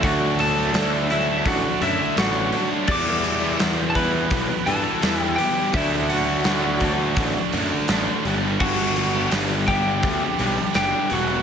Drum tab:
CC |--------|x-------|--------|x-------|
HH |oooooooo|-ooooooo|oooooooo|-ooooooo|
SD |--o---o-|--o---o-|--o---o-|--o---o-|
BD |o---o---|o--oo---|o--oo---|o--oo---|